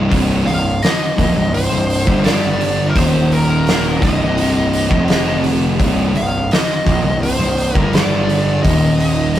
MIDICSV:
0, 0, Header, 1, 6, 480
1, 0, Start_track
1, 0, Key_signature, -3, "minor"
1, 0, Tempo, 710395
1, 78, Time_signature, 4, 2, 24, 8
1, 6347, End_track
2, 0, Start_track
2, 0, Title_t, "Lead electric guitar"
2, 0, Program_c, 0, 29
2, 315, Note_on_c, 0, 77, 94
2, 558, Note_on_c, 0, 75, 91
2, 563, Note_off_c, 0, 77, 0
2, 1038, Note_off_c, 0, 75, 0
2, 1041, Note_on_c, 0, 72, 91
2, 1519, Note_off_c, 0, 72, 0
2, 1521, Note_on_c, 0, 74, 88
2, 1953, Note_on_c, 0, 70, 70
2, 1965, Note_off_c, 0, 74, 0
2, 1999, Note_off_c, 0, 70, 0
2, 2004, Note_on_c, 0, 72, 88
2, 2245, Note_on_c, 0, 70, 88
2, 2248, Note_off_c, 0, 72, 0
2, 2724, Note_on_c, 0, 75, 92
2, 2736, Note_off_c, 0, 70, 0
2, 3655, Note_off_c, 0, 75, 0
2, 4171, Note_on_c, 0, 77, 103
2, 4405, Note_on_c, 0, 75, 95
2, 4412, Note_off_c, 0, 77, 0
2, 4881, Note_off_c, 0, 75, 0
2, 4884, Note_on_c, 0, 72, 90
2, 5249, Note_off_c, 0, 72, 0
2, 5249, Note_on_c, 0, 70, 90
2, 5368, Note_off_c, 0, 70, 0
2, 5371, Note_on_c, 0, 74, 94
2, 5827, Note_off_c, 0, 74, 0
2, 5830, Note_on_c, 0, 75, 99
2, 6347, Note_off_c, 0, 75, 0
2, 6347, End_track
3, 0, Start_track
3, 0, Title_t, "Distorted electric guitar"
3, 0, Program_c, 1, 30
3, 0, Note_on_c, 1, 43, 89
3, 70, Note_off_c, 1, 43, 0
3, 72, Note_on_c, 1, 36, 92
3, 79, Note_on_c, 1, 43, 101
3, 82, Note_on_c, 1, 48, 104
3, 308, Note_off_c, 1, 36, 0
3, 311, Note_off_c, 1, 43, 0
3, 313, Note_off_c, 1, 48, 0
3, 316, Note_on_c, 1, 36, 57
3, 319, Note_on_c, 1, 43, 68
3, 509, Note_off_c, 1, 36, 0
3, 511, Note_off_c, 1, 43, 0
3, 797, Note_on_c, 1, 46, 89
3, 802, Note_on_c, 1, 53, 90
3, 910, Note_off_c, 1, 46, 0
3, 913, Note_off_c, 1, 53, 0
3, 922, Note_on_c, 1, 36, 64
3, 925, Note_on_c, 1, 43, 71
3, 1112, Note_off_c, 1, 36, 0
3, 1113, Note_off_c, 1, 43, 0
3, 1160, Note_on_c, 1, 36, 61
3, 1163, Note_on_c, 1, 43, 77
3, 1351, Note_off_c, 1, 36, 0
3, 1353, Note_off_c, 1, 43, 0
3, 1398, Note_on_c, 1, 43, 87
3, 1403, Note_on_c, 1, 50, 97
3, 1407, Note_on_c, 1, 55, 98
3, 1991, Note_off_c, 1, 43, 0
3, 1993, Note_off_c, 1, 50, 0
3, 1996, Note_off_c, 1, 55, 0
3, 2002, Note_on_c, 1, 39, 98
3, 2006, Note_on_c, 1, 46, 97
3, 2009, Note_on_c, 1, 51, 111
3, 2713, Note_off_c, 1, 39, 0
3, 2715, Note_off_c, 1, 46, 0
3, 2716, Note_off_c, 1, 51, 0
3, 2720, Note_on_c, 1, 36, 87
3, 2725, Note_on_c, 1, 43, 89
3, 2727, Note_on_c, 1, 48, 90
3, 3307, Note_off_c, 1, 48, 0
3, 3309, Note_off_c, 1, 36, 0
3, 3312, Note_off_c, 1, 43, 0
3, 3312, Note_on_c, 1, 41, 94
3, 3315, Note_on_c, 1, 48, 99
3, 3319, Note_on_c, 1, 53, 97
3, 3908, Note_off_c, 1, 41, 0
3, 3910, Note_off_c, 1, 48, 0
3, 3912, Note_off_c, 1, 53, 0
3, 3912, Note_on_c, 1, 36, 93
3, 3917, Note_on_c, 1, 43, 99
3, 3921, Note_on_c, 1, 48, 110
3, 4148, Note_off_c, 1, 36, 0
3, 4151, Note_off_c, 1, 43, 0
3, 4153, Note_off_c, 1, 48, 0
3, 4156, Note_on_c, 1, 36, 58
3, 4159, Note_on_c, 1, 43, 65
3, 4349, Note_off_c, 1, 36, 0
3, 4351, Note_off_c, 1, 43, 0
3, 4635, Note_on_c, 1, 46, 89
3, 4640, Note_on_c, 1, 53, 89
3, 4750, Note_off_c, 1, 46, 0
3, 4752, Note_off_c, 1, 53, 0
3, 4759, Note_on_c, 1, 36, 66
3, 4762, Note_on_c, 1, 43, 69
3, 4951, Note_off_c, 1, 36, 0
3, 4952, Note_off_c, 1, 43, 0
3, 4997, Note_on_c, 1, 36, 58
3, 5000, Note_on_c, 1, 43, 77
3, 5190, Note_off_c, 1, 36, 0
3, 5192, Note_off_c, 1, 43, 0
3, 5234, Note_on_c, 1, 43, 91
3, 5240, Note_on_c, 1, 50, 86
3, 5245, Note_on_c, 1, 55, 108
3, 5830, Note_off_c, 1, 43, 0
3, 5832, Note_off_c, 1, 50, 0
3, 5835, Note_off_c, 1, 55, 0
3, 5838, Note_on_c, 1, 39, 98
3, 5843, Note_on_c, 1, 46, 95
3, 5846, Note_on_c, 1, 51, 109
3, 6347, Note_off_c, 1, 39, 0
3, 6347, Note_off_c, 1, 46, 0
3, 6347, Note_off_c, 1, 51, 0
3, 6347, End_track
4, 0, Start_track
4, 0, Title_t, "Distorted electric guitar"
4, 0, Program_c, 2, 30
4, 0, Note_on_c, 2, 36, 89
4, 68, Note_off_c, 2, 36, 0
4, 6347, End_track
5, 0, Start_track
5, 0, Title_t, "Picked electric bass"
5, 0, Program_c, 3, 34
5, 79, Note_on_c, 3, 24, 89
5, 302, Note_off_c, 3, 24, 0
5, 309, Note_on_c, 3, 24, 80
5, 536, Note_off_c, 3, 24, 0
5, 796, Note_on_c, 3, 34, 86
5, 905, Note_off_c, 3, 34, 0
5, 909, Note_on_c, 3, 24, 78
5, 1136, Note_off_c, 3, 24, 0
5, 1152, Note_on_c, 3, 24, 76
5, 1378, Note_off_c, 3, 24, 0
5, 1400, Note_on_c, 3, 31, 91
5, 1972, Note_off_c, 3, 31, 0
5, 1995, Note_on_c, 3, 27, 89
5, 2690, Note_off_c, 3, 27, 0
5, 2717, Note_on_c, 3, 24, 86
5, 3291, Note_off_c, 3, 24, 0
5, 3312, Note_on_c, 3, 29, 92
5, 3889, Note_off_c, 3, 29, 0
5, 3915, Note_on_c, 3, 24, 93
5, 4140, Note_off_c, 3, 24, 0
5, 4154, Note_on_c, 3, 24, 80
5, 4380, Note_off_c, 3, 24, 0
5, 4636, Note_on_c, 3, 34, 91
5, 4749, Note_off_c, 3, 34, 0
5, 4757, Note_on_c, 3, 24, 81
5, 4981, Note_off_c, 3, 24, 0
5, 4992, Note_on_c, 3, 24, 77
5, 5219, Note_off_c, 3, 24, 0
5, 5237, Note_on_c, 3, 31, 94
5, 5811, Note_off_c, 3, 31, 0
5, 5840, Note_on_c, 3, 27, 97
5, 6347, Note_off_c, 3, 27, 0
5, 6347, End_track
6, 0, Start_track
6, 0, Title_t, "Drums"
6, 78, Note_on_c, 9, 36, 100
6, 78, Note_on_c, 9, 46, 78
6, 145, Note_off_c, 9, 36, 0
6, 146, Note_off_c, 9, 46, 0
6, 321, Note_on_c, 9, 46, 53
6, 389, Note_off_c, 9, 46, 0
6, 558, Note_on_c, 9, 46, 74
6, 572, Note_on_c, 9, 38, 106
6, 625, Note_off_c, 9, 46, 0
6, 639, Note_off_c, 9, 38, 0
6, 799, Note_on_c, 9, 36, 98
6, 802, Note_on_c, 9, 46, 54
6, 867, Note_off_c, 9, 36, 0
6, 869, Note_off_c, 9, 46, 0
6, 1043, Note_on_c, 9, 46, 75
6, 1111, Note_off_c, 9, 46, 0
6, 1283, Note_on_c, 9, 46, 60
6, 1350, Note_off_c, 9, 46, 0
6, 1399, Note_on_c, 9, 36, 101
6, 1467, Note_off_c, 9, 36, 0
6, 1515, Note_on_c, 9, 46, 77
6, 1529, Note_on_c, 9, 38, 108
6, 1583, Note_off_c, 9, 46, 0
6, 1597, Note_off_c, 9, 38, 0
6, 1762, Note_on_c, 9, 46, 59
6, 1829, Note_off_c, 9, 46, 0
6, 1997, Note_on_c, 9, 46, 88
6, 1998, Note_on_c, 9, 36, 107
6, 2065, Note_off_c, 9, 36, 0
6, 2065, Note_off_c, 9, 46, 0
6, 2242, Note_on_c, 9, 46, 57
6, 2310, Note_off_c, 9, 46, 0
6, 2478, Note_on_c, 9, 46, 78
6, 2492, Note_on_c, 9, 38, 115
6, 2545, Note_off_c, 9, 46, 0
6, 2560, Note_off_c, 9, 38, 0
6, 2717, Note_on_c, 9, 36, 109
6, 2722, Note_on_c, 9, 46, 57
6, 2785, Note_off_c, 9, 36, 0
6, 2789, Note_off_c, 9, 46, 0
6, 2958, Note_on_c, 9, 46, 77
6, 3026, Note_off_c, 9, 46, 0
6, 3198, Note_on_c, 9, 46, 56
6, 3265, Note_off_c, 9, 46, 0
6, 3316, Note_on_c, 9, 36, 107
6, 3383, Note_off_c, 9, 36, 0
6, 3434, Note_on_c, 9, 46, 71
6, 3448, Note_on_c, 9, 38, 111
6, 3501, Note_off_c, 9, 46, 0
6, 3515, Note_off_c, 9, 38, 0
6, 3675, Note_on_c, 9, 46, 56
6, 3743, Note_off_c, 9, 46, 0
6, 3916, Note_on_c, 9, 36, 114
6, 3917, Note_on_c, 9, 46, 73
6, 3984, Note_off_c, 9, 36, 0
6, 3985, Note_off_c, 9, 46, 0
6, 4158, Note_on_c, 9, 46, 51
6, 4225, Note_off_c, 9, 46, 0
6, 4400, Note_on_c, 9, 46, 74
6, 4414, Note_on_c, 9, 38, 107
6, 4468, Note_off_c, 9, 46, 0
6, 4482, Note_off_c, 9, 38, 0
6, 4638, Note_on_c, 9, 36, 97
6, 4640, Note_on_c, 9, 46, 53
6, 4706, Note_off_c, 9, 36, 0
6, 4707, Note_off_c, 9, 46, 0
6, 4886, Note_on_c, 9, 46, 78
6, 4954, Note_off_c, 9, 46, 0
6, 5122, Note_on_c, 9, 46, 57
6, 5190, Note_off_c, 9, 46, 0
6, 5239, Note_on_c, 9, 36, 111
6, 5307, Note_off_c, 9, 36, 0
6, 5359, Note_on_c, 9, 46, 73
6, 5373, Note_on_c, 9, 38, 108
6, 5426, Note_off_c, 9, 46, 0
6, 5440, Note_off_c, 9, 38, 0
6, 5604, Note_on_c, 9, 46, 58
6, 5672, Note_off_c, 9, 46, 0
6, 5842, Note_on_c, 9, 36, 113
6, 5843, Note_on_c, 9, 46, 83
6, 5909, Note_off_c, 9, 36, 0
6, 5911, Note_off_c, 9, 46, 0
6, 6083, Note_on_c, 9, 46, 58
6, 6151, Note_off_c, 9, 46, 0
6, 6321, Note_on_c, 9, 46, 77
6, 6347, Note_off_c, 9, 46, 0
6, 6347, End_track
0, 0, End_of_file